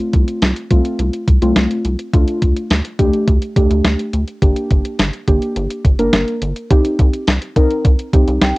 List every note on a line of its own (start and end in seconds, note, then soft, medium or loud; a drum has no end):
0.00 0.48 A3 medium
0.00 0.48 C4 medium
0.00 0.48 F4 medium
0.13 0.25 C2 loud
0.13 kick medium
0.13 closed hi-hat medium
0.28 closed hi-hat soft
0.42 0.53 C2 loud
0.42 snare loud
0.42 closed hi-hat medium
0.56 closed hi-hat soft
0.70 0.82 C2 medium
0.70 1.06 A3 medium
0.70 1.06 C4 medium
0.70 1.06 F4 medium
0.70 kick medium
0.70 closed hi-hat medium
0.85 closed hi-hat soft
0.99 1.10 C2 loud
0.99 closed hi-hat medium
1.13 closed hi-hat medium
1.28 1.39 C2 medium
1.28 kick loud
1.28 closed hi-hat medium
1.42 1.53 C2 loud
1.42 1.78 A3 medium
1.42 1.78 C4 medium
1.42 1.78 F4 medium
1.42 closed hi-hat soft
1.56 1.67 C2 loud
1.56 snare loud
1.56 closed hi-hat medium
1.71 closed hi-hat soft
1.85 1.96 C2 medium
1.85 closed hi-hat medium
1.99 closed hi-hat soft
2.13 2.25 D2 loud
2.13 2.56 A3 medium
2.13 2.56 D4 medium
2.13 2.56 F4 medium
2.13 kick loud
2.13 closed hi-hat medium
2.28 closed hi-hat medium
2.42 2.53 D2 medium
2.42 kick medium
2.42 closed hi-hat medium
2.56 closed hi-hat soft
2.70 2.82 D2 medium
2.70 snare loud
2.70 closed hi-hat medium
2.85 closed hi-hat soft
2.99 3.10 D2 loud
2.99 3.28 A3 medium
2.99 3.28 D4 medium
2.99 3.28 G4 medium
2.99 kick medium
2.99 closed hi-hat medium
3.13 closed hi-hat soft
3.28 3.39 D2 loud
3.28 kick loud
3.28 closed hi-hat medium
3.42 closed hi-hat medium
3.56 3.67 D2 medium
3.56 3.99 A3 medium
3.56 3.99 D4 medium
3.56 3.99 G4 medium
3.56 kick loud
3.56 closed hi-hat medium
3.71 3.82 D2 loud
3.71 closed hi-hat soft
3.85 3.96 D2 loud
3.85 snare loud
3.85 closed hi-hat medium
3.99 closed hi-hat soft
4.13 4.25 D2 medium
4.13 closed hi-hat medium
4.28 closed hi-hat soft
4.42 4.53 G1 loud
4.42 4.85 A#3 medium
4.42 4.85 D4 medium
4.42 4.85 G4 medium
4.42 kick loud
4.42 closed hi-hat medium
4.56 closed hi-hat medium
4.70 4.82 G1 loud
4.70 kick medium
4.70 closed hi-hat medium
4.85 closed hi-hat soft
4.99 5.10 G1 loud
4.99 snare loud
4.99 closed hi-hat medium
5.13 closed hi-hat soft
5.28 5.39 G1 loud
5.28 5.64 A#3 medium
5.28 5.64 D4 medium
5.28 5.64 G4 medium
5.28 kick medium
5.28 closed hi-hat medium
5.42 closed hi-hat soft
5.56 5.67 G1 loud
5.56 closed hi-hat medium
5.71 closed hi-hat medium
5.85 5.96 G1 medium
5.85 kick medium
5.85 closed hi-hat medium
5.99 6.10 G1 medium
5.99 6.35 A#3 medium
5.99 6.35 D4 medium
5.99 6.35 A#4 medium
5.99 closed hi-hat medium
6.13 6.25 G1 medium
6.13 snare loud
6.13 closed hi-hat medium
6.28 closed hi-hat soft
6.42 6.53 G1 loud
6.42 closed hi-hat medium
6.56 closed hi-hat soft
6.71 6.82 C2 loud
6.71 7.14 C4 medium
6.71 7.14 D#4 medium
6.71 7.14 G4 medium
6.71 kick loud
6.71 closed hi-hat medium
6.85 closed hi-hat medium
6.99 7.10 C2 loud
6.99 kick medium
6.99 closed hi-hat medium
7.14 closed hi-hat soft
7.27 7.39 C2 loud
7.27 snare loud
7.27 closed hi-hat medium
7.42 closed hi-hat soft
7.56 7.67 C2 loud
7.56 7.85 C4 medium
7.56 7.85 D#4 medium
7.56 7.85 A#4 medium
7.56 kick medium
7.56 closed hi-hat medium
7.71 closed hi-hat soft
7.85 7.96 C2 loud
7.85 kick medium
7.85 closed hi-hat medium
7.99 closed hi-hat medium
8.13 8.25 C2 loud
8.13 8.56 C4 medium
8.13 8.56 D#4 medium
8.13 8.56 G4 medium
8.13 kick loud
8.13 closed hi-hat medium
8.28 8.39 C2 medium
8.28 closed hi-hat soft
8.42 8.53 C2 loud
8.42 8.58 G5 medium
8.42 snare loud
8.42 closed hi-hat medium